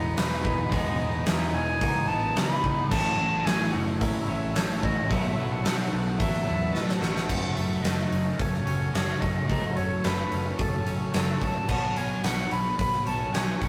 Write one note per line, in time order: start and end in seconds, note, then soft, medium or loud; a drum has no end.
0.00 0.16 E1 medium
0.00 0.14 E2 medium
0.00 0.17 B2 medium
0.00 0.18 E3 medium
0.00 0.46 E3 loud
0.00 0.69 E3 medium
0.00 0.45 G#3 medium
0.00 0.69 G#3 medium
0.00 0.43 B3 medium
0.00 0.70 B3 medium
0.00 1.75 B3 medium
0.00 0.42 D#4 medium
0.00 0.43 D#4 medium
0.00 0.16 G#4 medium
0.00 0.71 G#4 loud
0.00 2.87 B4 medium
0.00 0.18 D#5 medium
0.00 2.86 D#5 medium
0.00 2.87 G#5 medium
0.00 2.87 D#6 medium
0.16 0.43 E1 medium
0.16 0.69 E2 medium
0.16 0.45 B2 medium
0.16 0.42 E3 medium
0.16 1.25 G#4 medium
0.16 0.72 B4 medium
0.16 snare loud
0.16 open hi-hat medium
0.43 0.70 E1 medium
0.43 0.72 B2 medium
0.43 0.74 E3 medium
0.43 0.71 G#3 medium
0.43 0.72 B3 medium
0.43 0.73 D#4 medium
0.43 kick loud
0.69 0.98 E1 loud
0.69 1.24 E2 loud
0.69 0.99 B2 loud
0.69 2.89 E3 medium
0.69 1.26 E3 medium
0.69 2.88 G#3 medium
0.69 1.26 G#3 loud
0.69 2.89 B3 loud
0.69 2.90 G#4 loud
0.69 1.27 D#5 loud
0.69 kick loud
0.69 open hi-hat medium
0.73 0.97 E3 loud
0.73 1.27 B3 loud
0.73 1.27 D#4 loud
0.97 1.24 E1 loud
0.97 1.26 B2 medium
0.97 1.29 E3 medium
0.97 1.52 B3 medium
1.26 2.33 E2 medium
1.26 1.52 E2 loud
1.26 2.10 B2 medium
1.26 1.81 E3 medium
1.26 2.07 E3 medium
1.26 1.81 G#3 medium
1.26 1.81 B3 medium
1.26 1.82 D#4 medium
1.26 2.34 G#4 medium
1.26 1.55 E5 loud
1.26 snare loud
1.26 open hi-hat medium
1.53 1.79 E1 medium
1.53 2.07 B3 medium
1.53 2.09 G#5 loud
1.81 2.07 C#2 medium
1.81 2.66 E3 medium
1.81 2.09 G#3 loud
1.81 2.08 B3 loud
1.81 2.06 D#4 loud
1.81 kick loud
1.81 open hi-hat medium
2.07 2.34 A1 medium
2.07 2.37 E3 medium
2.07 2.64 G#3 medium
2.07 2.64 B3 medium
2.07 2.62 D#4 medium
2.07 2.38 A5 loud
2.11 2.35 B2 medium
2.34 2.62 C#2 medium
2.34 2.88 E2 medium
2.34 2.63 B2 medium
2.34 2.60 E3 medium
2.34 2.91 G#4 medium
2.34 2.89 B5 loud
2.34 snare loud
2.34 open hi-hat medium
2.61 2.89 C#2 loud
2.61 2.87 B2 medium
2.61 2.89 E3 medium
2.61 2.90 B3 medium
2.61 2.89 D#4 medium
2.61 kick medium
2.66 2.90 G#3 medium
2.88 3.17 A1 loud
2.88 3.42 A2 loud
2.88 5.07 A2 medium
2.88 3.44 A2 loud
2.88 5.07 E3 medium
2.88 3.21 E3 loud
2.88 3.46 F#3 loud
2.88 5.09 A3 loud
2.88 3.17 A3 loud
2.88 5.08 C#4 loud
2.88 5.09 E4 loud
2.88 5.07 C#5 medium
2.88 7.25 F#5 medium
2.88 5.07 A5 medium
2.88 3.47 A5 loud
2.88 5.07 E6 medium
2.88 kick loud
2.88 crash loud
2.92 3.46 C#4 loud
2.92 3.48 E4 loud
2.92 5.11 A4 loud
3.17 3.44 A1 loud
3.17 3.45 E3 medium
3.17 3.47 A3 medium
3.17 3.70 C#4 medium
3.44 3.71 A1 medium
3.44 4.53 A2 medium
3.44 3.98 A2 medium
3.44 4.29 E3 medium
3.44 4.00 F#3 medium
3.44 4.27 A3 medium
3.44 4.00 C#4 medium
3.44 4.55 A4 medium
3.44 3.73 G#5 loud
3.44 snare loud
3.44 open hi-hat medium
3.48 4.01 E4 medium
3.72 3.99 F#1 medium
3.72 4.27 C#4 medium
3.72 4.02 F#5 medium
3.99 4.55 A2 medium
3.99 4.27 A2 medium
3.99 4.30 F#3 medium
3.99 4.28 C#4 loud
3.99 4.26 E4 loud
3.99 4.28 E5 medium
3.99 kick loud
3.99 open hi-hat medium
4.27 4.54 A1 medium
4.27 4.55 E3 medium
4.27 4.85 F#3 medium
4.27 4.57 A3 medium
4.27 4.83 C#4 medium
4.27 4.82 E4 medium
4.27 4.57 E5 loud
4.55 4.81 A1 medium
4.55 5.08 A2 medium
4.55 4.84 E3 medium
4.55 4.82 A3 medium
4.55 5.41 A4 medium
4.55 4.84 C#5 medium
4.55 snare loud
4.55 open hi-hat medium
4.82 5.09 A1 medium
4.82 5.10 E3 medium
4.82 5.10 F#3 medium
4.82 5.13 A3 medium
4.82 5.09 C#4 medium
4.82 5.08 E4 medium
4.82 5.12 D#5 medium
4.82 kick medium
5.08 5.36 B1 medium
5.08 7.26 B2 loud
5.08 5.62 B2 loud
5.08 5.63 B2 medium
5.08 7.27 D#3 loud
5.08 7.27 F#3 loud
5.08 5.64 F#3 medium
5.08 5.39 F#3 loud
5.08 5.64 A3 medium
5.08 7.27 B3 loud
5.08 5.65 E4 loud
5.08 7.28 A4 loud
5.08 7.26 B4 medium
5.08 5.53 E5 loud
5.08 7.26 A5 medium
5.08 7.26 E6 medium
5.08 kick loud
5.08 open hi-hat medium
5.13 5.36 B3 loud
5.37 5.63 B1 medium
5.37 5.65 F#3 medium
5.37 5.67 B3 medium
5.37 5.90 B3 medium
5.52 5.92 F#5 medium
5.64 6.17 B2 medium
5.64 6.72 B2 medium
5.64 5.91 B2 loud
5.64 6.18 F#3 medium
5.64 6.48 F#3 medium
5.64 6.19 A3 medium
5.64 6.20 E4 medium
5.64 6.72 A4 medium
5.64 snare loud
5.64 open hi-hat medium
5.68 6.44 B3 medium
5.91 6.18 B1 medium
5.91 6.44 B3 medium
6.17 6.46 A1 medium
6.17 6.74 B2 medium
6.17 6.47 F#3 medium
6.17 6.46 A3 loud
6.17 6.44 E4 loud
6.17 6.97 E5 loud
6.17 kick loud
6.17 open hi-hat medium
6.34 snare soft
6.45 6.73 E2 medium
6.45 7.02 F#3 medium
6.45 6.74 F#3 medium
6.45 7.01 A3 medium
6.45 7.28 B3 medium
6.45 6.75 B3 medium
6.45 7.00 E4 medium
6.73 7.00 A2 medium
6.73 7.27 B2 medium
6.73 7.03 F#3 medium
6.73 7.00 B3 medium
6.73 7.29 A4 medium
6.73 snare medium
6.89 snare medium
7.00 7.27 A1 medium
7.00 7.28 F#3 medium
7.00 7.29 F#3 medium
7.00 7.28 A3 medium
7.00 7.27 B3 medium
7.00 7.27 E4 medium
7.00 7.26 F#5 medium
7.00 snare medium
7.16 snare medium
7.26 7.49 F#1 medium
7.26 7.82 F#2 medium
7.26 9.47 F#2 medium
7.26 7.82 C#3 loud
7.26 7.83 C#3 loud
7.26 7.58 F#3 medium
7.26 7.57 A3 loud
7.26 11.65 F#4 medium
7.26 11.64 A4 medium
7.26 13.69 C#5 medium
7.26 7.56 F#5 medium
7.26 kick loud
7.26 crash loud
7.31 7.85 F#3 loud
7.31 7.55 C#4 loud
7.54 7.76 F#1 medium
7.54 7.84 F#3 medium
7.54 7.85 A3 medium
7.54 7.86 C#4 medium
7.54 7.84 E5 medium
7.54 open hi-hat medium
7.82 8.04 F#1 medium
7.82 8.36 F#2 medium
7.82 8.92 C#3 medium
7.82 8.38 C#3 medium
7.82 8.68 F#3 medium
7.82 8.40 F#3 medium
7.82 8.66 A3 medium
7.82 8.65 C#4 medium
7.82 8.40 D#5 medium
7.82 snare loud
7.82 open hi-hat medium
7.99 snare soft
8.10 8.31 F#1 medium
8.10 8.66 C#4 medium
8.10 open hi-hat medium
8.38 8.59 F#1 medium
8.38 8.91 F#2 medium
8.38 8.93 C#3 medium
8.38 8.96 F#3 loud
8.38 9.20 A3 medium
8.38 8.93 C#5 medium
8.38 kick loud
8.38 open hi-hat medium
8.54 snare soft
8.66 8.86 F#1 medium
8.66 8.94 F#3 medium
8.66 8.93 A3 medium
8.66 8.95 C#4 medium
8.66 open hi-hat medium
8.93 9.13 F#1 medium
8.93 9.45 F#2 medium
8.93 9.48 C#3 medium
8.93 9.47 C#3 medium
8.93 9.23 F#3 medium
8.93 9.49 F#3 medium
8.93 9.21 A3 medium
8.93 9.20 C#4 medium
8.93 11.12 F#4 medium
8.93 9.22 C#5 medium
8.93 snare loud
8.93 open hi-hat medium
9.20 9.42 F#1 medium
9.20 9.49 F#3 medium
9.20 9.49 A3 medium
9.20 9.50 C#4 medium
9.20 9.48 D#5 medium
9.20 kick medium
9.20 open hi-hat medium
9.47 9.69 C#2 loud
9.47 10.00 F#2 loud
9.47 10.03 F#2 medium
9.47 10.03 C#3 loud
9.47 10.02 C#3 medium
9.47 9.78 F#3 loud
9.47 10.05 F#3 loud
9.47 9.76 A3 loud
9.47 9.75 C#4 loud
9.47 9.78 D#5 loud
9.47 kick loud
9.47 open hi-hat medium
9.76 9.96 F#1 medium
9.76 10.04 F#3 medium
9.76 10.04 A3 medium
9.76 10.06 C#4 medium
9.76 10.06 C#5 loud
9.76 open hi-hat medium
10.02 10.24 F#1 medium
10.02 10.56 F#2 medium
10.02 11.12 C#3 medium
10.02 10.58 C#3 medium
10.02 10.88 F#3 medium
10.02 10.86 A3 medium
10.02 10.61 B4 medium
10.02 snare loud
10.02 open hi-hat medium
10.06 10.60 F#3 medium
10.06 10.85 C#4 medium
10.30 10.51 F#1 medium
10.30 10.85 C#4 medium
10.30 open hi-hat medium
10.57 10.99 F#1 medium
10.57 11.11 F#2 medium
10.57 11.13 C#3 loud
10.57 11.15 F#3 loud
10.57 11.39 A3 medium
10.57 10.90 A4 medium
10.57 kick loud
10.57 open hi-hat medium
10.86 11.14 F#3 medium
10.86 11.14 A3 medium
10.86 11.16 C#4 medium
10.86 open hi-hat medium
11.12 11.34 F#1 medium
11.12 11.66 F#2 medium
11.12 11.67 C#3 medium
11.12 11.66 C#3 medium
11.12 11.43 F#3 medium
11.12 11.68 F#3 medium
11.12 11.41 A3 medium
11.12 11.41 C#4 medium
11.12 13.32 F#4 medium
11.12 11.43 A4 medium
11.12 snare loud
11.12 open hi-hat medium
11.41 11.61 C#2 medium
11.41 11.68 F#3 medium
11.41 11.67 A3 medium
11.41 11.70 C#4 medium
11.41 11.69 A5 loud
11.41 kick medium
11.41 open hi-hat medium
11.67 11.89 B1 loud
11.67 12.20 B2 medium
11.67 12.22 B2 medium
11.67 12.22 F#3 loud
11.67 11.97 F#3 medium
11.67 11.96 B3 loud
11.67 12.24 B3 loud
11.67 11.95 C#4 loud
11.67 13.69 F#4 medium
11.67 13.69 B4 medium
11.67 11.98 A5 loud
11.67 kick loud
11.67 crash medium
11.95 12.17 B1 medium
11.95 12.23 F#3 medium
11.95 12.24 B3 medium
11.95 12.25 C#4 medium
11.95 12.25 G#5 loud
11.95 open hi-hat medium
12.21 12.44 B1 medium
12.21 12.75 B2 medium
12.21 13.32 B2 medium
12.21 12.78 F#3 medium
12.21 13.08 F#3 medium
12.21 12.79 B3 medium
12.21 13.06 B3 medium
12.21 12.53 F#5 loud
12.21 snare loud
12.21 open hi-hat medium
12.25 13.06 C#4 medium
12.50 12.72 B1 medium
12.50 13.05 C#4 medium
12.50 12.78 B5 loud
12.50 open hi-hat medium
12.77 12.99 B1 medium
12.77 13.31 B2 medium
12.77 13.33 F#3 loud
12.77 13.59 B3 medium
12.77 13.34 B3 loud
12.77 13.08 B5 loud
12.77 kick loud
12.77 open hi-hat medium
12.93 snare soft
13.06 13.26 B1 medium
13.06 13.34 F#3 medium
13.06 13.34 B3 medium
13.06 13.35 C#4 medium
13.06 13.35 A5 loud
13.06 open hi-hat medium
13.32 13.53 B1 medium
13.32 13.69 B2 medium
13.32 13.69 F#3 medium
13.32 13.63 F#3 medium
13.32 13.61 B3 medium
13.32 13.69 B3 medium
13.32 13.61 C#4 medium
13.32 13.69 F#4 medium
13.32 13.63 G#5 loud
13.32 snare loud
13.32 open hi-hat medium
13.61 13.69 B1 medium
13.61 13.69 F#3 medium
13.61 13.69 B3 medium
13.61 13.69 C#4 medium
13.61 13.69 F#5 loud
13.61 kick medium
13.61 open hi-hat medium